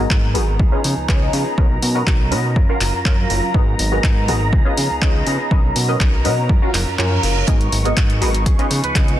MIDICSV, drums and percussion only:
0, 0, Header, 1, 2, 480
1, 0, Start_track
1, 0, Tempo, 491803
1, 1541, Time_signature, 4, 2, 24, 8
1, 8978, End_track
2, 0, Start_track
2, 0, Title_t, "Drums"
2, 100, Note_on_c, 9, 36, 115
2, 104, Note_on_c, 9, 39, 109
2, 198, Note_off_c, 9, 36, 0
2, 202, Note_off_c, 9, 39, 0
2, 342, Note_on_c, 9, 46, 102
2, 346, Note_on_c, 9, 82, 91
2, 439, Note_off_c, 9, 46, 0
2, 443, Note_off_c, 9, 82, 0
2, 474, Note_on_c, 9, 82, 41
2, 571, Note_off_c, 9, 82, 0
2, 581, Note_on_c, 9, 36, 117
2, 585, Note_on_c, 9, 82, 48
2, 678, Note_off_c, 9, 36, 0
2, 683, Note_off_c, 9, 82, 0
2, 823, Note_on_c, 9, 46, 100
2, 823, Note_on_c, 9, 82, 93
2, 920, Note_off_c, 9, 82, 0
2, 921, Note_off_c, 9, 46, 0
2, 940, Note_on_c, 9, 82, 38
2, 1037, Note_off_c, 9, 82, 0
2, 1061, Note_on_c, 9, 36, 116
2, 1065, Note_on_c, 9, 39, 110
2, 1158, Note_off_c, 9, 36, 0
2, 1163, Note_off_c, 9, 39, 0
2, 1298, Note_on_c, 9, 82, 88
2, 1302, Note_on_c, 9, 46, 102
2, 1396, Note_off_c, 9, 82, 0
2, 1399, Note_off_c, 9, 46, 0
2, 1425, Note_on_c, 9, 82, 35
2, 1523, Note_off_c, 9, 82, 0
2, 1541, Note_on_c, 9, 36, 110
2, 1541, Note_on_c, 9, 82, 55
2, 1638, Note_off_c, 9, 36, 0
2, 1638, Note_off_c, 9, 82, 0
2, 1781, Note_on_c, 9, 46, 96
2, 1782, Note_on_c, 9, 82, 82
2, 1879, Note_off_c, 9, 46, 0
2, 1879, Note_off_c, 9, 82, 0
2, 1907, Note_on_c, 9, 82, 34
2, 2005, Note_off_c, 9, 82, 0
2, 2020, Note_on_c, 9, 36, 110
2, 2023, Note_on_c, 9, 39, 108
2, 2118, Note_off_c, 9, 36, 0
2, 2121, Note_off_c, 9, 39, 0
2, 2262, Note_on_c, 9, 46, 97
2, 2263, Note_on_c, 9, 82, 91
2, 2359, Note_off_c, 9, 46, 0
2, 2361, Note_off_c, 9, 82, 0
2, 2389, Note_on_c, 9, 82, 35
2, 2487, Note_off_c, 9, 82, 0
2, 2500, Note_on_c, 9, 36, 111
2, 2501, Note_on_c, 9, 82, 50
2, 2598, Note_off_c, 9, 36, 0
2, 2598, Note_off_c, 9, 82, 0
2, 2736, Note_on_c, 9, 82, 88
2, 2741, Note_on_c, 9, 46, 101
2, 2744, Note_on_c, 9, 39, 54
2, 2834, Note_off_c, 9, 82, 0
2, 2839, Note_off_c, 9, 46, 0
2, 2841, Note_off_c, 9, 39, 0
2, 2872, Note_on_c, 9, 82, 32
2, 2969, Note_off_c, 9, 82, 0
2, 2980, Note_on_c, 9, 36, 113
2, 2984, Note_on_c, 9, 39, 111
2, 3077, Note_off_c, 9, 36, 0
2, 3082, Note_off_c, 9, 39, 0
2, 3222, Note_on_c, 9, 46, 99
2, 3222, Note_on_c, 9, 82, 87
2, 3319, Note_off_c, 9, 46, 0
2, 3319, Note_off_c, 9, 82, 0
2, 3348, Note_on_c, 9, 82, 35
2, 3446, Note_off_c, 9, 82, 0
2, 3459, Note_on_c, 9, 36, 106
2, 3464, Note_on_c, 9, 82, 46
2, 3557, Note_off_c, 9, 36, 0
2, 3562, Note_off_c, 9, 82, 0
2, 3698, Note_on_c, 9, 82, 79
2, 3701, Note_on_c, 9, 46, 99
2, 3796, Note_off_c, 9, 82, 0
2, 3798, Note_off_c, 9, 46, 0
2, 3823, Note_on_c, 9, 82, 38
2, 3920, Note_off_c, 9, 82, 0
2, 3939, Note_on_c, 9, 36, 110
2, 3943, Note_on_c, 9, 39, 113
2, 4037, Note_off_c, 9, 36, 0
2, 4040, Note_off_c, 9, 39, 0
2, 4181, Note_on_c, 9, 46, 95
2, 4187, Note_on_c, 9, 82, 79
2, 4279, Note_off_c, 9, 46, 0
2, 4285, Note_off_c, 9, 82, 0
2, 4312, Note_on_c, 9, 82, 34
2, 4410, Note_off_c, 9, 82, 0
2, 4419, Note_on_c, 9, 36, 111
2, 4419, Note_on_c, 9, 82, 50
2, 4517, Note_off_c, 9, 36, 0
2, 4517, Note_off_c, 9, 82, 0
2, 4660, Note_on_c, 9, 46, 100
2, 4669, Note_on_c, 9, 82, 78
2, 4758, Note_off_c, 9, 46, 0
2, 4767, Note_off_c, 9, 82, 0
2, 4787, Note_on_c, 9, 82, 35
2, 4884, Note_off_c, 9, 82, 0
2, 4899, Note_on_c, 9, 36, 111
2, 4902, Note_on_c, 9, 39, 116
2, 4996, Note_off_c, 9, 36, 0
2, 4999, Note_off_c, 9, 39, 0
2, 5139, Note_on_c, 9, 46, 94
2, 5147, Note_on_c, 9, 82, 84
2, 5237, Note_off_c, 9, 46, 0
2, 5245, Note_off_c, 9, 82, 0
2, 5267, Note_on_c, 9, 82, 38
2, 5365, Note_off_c, 9, 82, 0
2, 5379, Note_on_c, 9, 36, 110
2, 5477, Note_off_c, 9, 36, 0
2, 5515, Note_on_c, 9, 82, 35
2, 5612, Note_off_c, 9, 82, 0
2, 5620, Note_on_c, 9, 46, 100
2, 5622, Note_on_c, 9, 82, 75
2, 5718, Note_off_c, 9, 46, 0
2, 5720, Note_off_c, 9, 82, 0
2, 5753, Note_on_c, 9, 82, 35
2, 5850, Note_off_c, 9, 82, 0
2, 5859, Note_on_c, 9, 36, 108
2, 5862, Note_on_c, 9, 39, 117
2, 5956, Note_off_c, 9, 36, 0
2, 5959, Note_off_c, 9, 39, 0
2, 6087, Note_on_c, 9, 82, 81
2, 6100, Note_on_c, 9, 46, 100
2, 6184, Note_off_c, 9, 82, 0
2, 6197, Note_off_c, 9, 46, 0
2, 6221, Note_on_c, 9, 82, 35
2, 6319, Note_off_c, 9, 82, 0
2, 6336, Note_on_c, 9, 82, 52
2, 6338, Note_on_c, 9, 36, 109
2, 6434, Note_off_c, 9, 82, 0
2, 6436, Note_off_c, 9, 36, 0
2, 6464, Note_on_c, 9, 82, 30
2, 6561, Note_off_c, 9, 82, 0
2, 6574, Note_on_c, 9, 82, 88
2, 6581, Note_on_c, 9, 46, 102
2, 6583, Note_on_c, 9, 39, 59
2, 6671, Note_off_c, 9, 82, 0
2, 6678, Note_off_c, 9, 46, 0
2, 6681, Note_off_c, 9, 39, 0
2, 6706, Note_on_c, 9, 82, 36
2, 6804, Note_off_c, 9, 82, 0
2, 6822, Note_on_c, 9, 39, 116
2, 6920, Note_off_c, 9, 39, 0
2, 6942, Note_on_c, 9, 82, 39
2, 7040, Note_off_c, 9, 82, 0
2, 7054, Note_on_c, 9, 82, 91
2, 7060, Note_on_c, 9, 46, 95
2, 7151, Note_off_c, 9, 82, 0
2, 7158, Note_off_c, 9, 46, 0
2, 7184, Note_on_c, 9, 82, 39
2, 7281, Note_off_c, 9, 82, 0
2, 7298, Note_on_c, 9, 36, 113
2, 7299, Note_on_c, 9, 42, 96
2, 7396, Note_off_c, 9, 36, 0
2, 7396, Note_off_c, 9, 42, 0
2, 7425, Note_on_c, 9, 42, 41
2, 7523, Note_off_c, 9, 42, 0
2, 7538, Note_on_c, 9, 82, 82
2, 7539, Note_on_c, 9, 46, 106
2, 7636, Note_off_c, 9, 82, 0
2, 7637, Note_off_c, 9, 46, 0
2, 7666, Note_on_c, 9, 42, 38
2, 7669, Note_on_c, 9, 82, 40
2, 7764, Note_off_c, 9, 42, 0
2, 7766, Note_off_c, 9, 82, 0
2, 7778, Note_on_c, 9, 36, 118
2, 7779, Note_on_c, 9, 42, 92
2, 7781, Note_on_c, 9, 39, 123
2, 7875, Note_off_c, 9, 36, 0
2, 7877, Note_off_c, 9, 42, 0
2, 7879, Note_off_c, 9, 39, 0
2, 7904, Note_on_c, 9, 42, 41
2, 8002, Note_off_c, 9, 42, 0
2, 8019, Note_on_c, 9, 82, 84
2, 8020, Note_on_c, 9, 46, 99
2, 8117, Note_off_c, 9, 82, 0
2, 8118, Note_off_c, 9, 46, 0
2, 8145, Note_on_c, 9, 42, 39
2, 8148, Note_on_c, 9, 82, 38
2, 8242, Note_off_c, 9, 42, 0
2, 8245, Note_off_c, 9, 82, 0
2, 8254, Note_on_c, 9, 82, 53
2, 8258, Note_on_c, 9, 36, 110
2, 8259, Note_on_c, 9, 42, 96
2, 8352, Note_off_c, 9, 82, 0
2, 8356, Note_off_c, 9, 36, 0
2, 8357, Note_off_c, 9, 42, 0
2, 8385, Note_on_c, 9, 42, 39
2, 8483, Note_off_c, 9, 42, 0
2, 8496, Note_on_c, 9, 82, 92
2, 8499, Note_on_c, 9, 46, 106
2, 8594, Note_off_c, 9, 82, 0
2, 8596, Note_off_c, 9, 46, 0
2, 8618, Note_on_c, 9, 82, 37
2, 8625, Note_on_c, 9, 42, 39
2, 8716, Note_off_c, 9, 82, 0
2, 8722, Note_off_c, 9, 42, 0
2, 8738, Note_on_c, 9, 36, 119
2, 8740, Note_on_c, 9, 42, 95
2, 8743, Note_on_c, 9, 39, 122
2, 8836, Note_off_c, 9, 36, 0
2, 8838, Note_off_c, 9, 42, 0
2, 8840, Note_off_c, 9, 39, 0
2, 8866, Note_on_c, 9, 42, 39
2, 8963, Note_off_c, 9, 42, 0
2, 8978, End_track
0, 0, End_of_file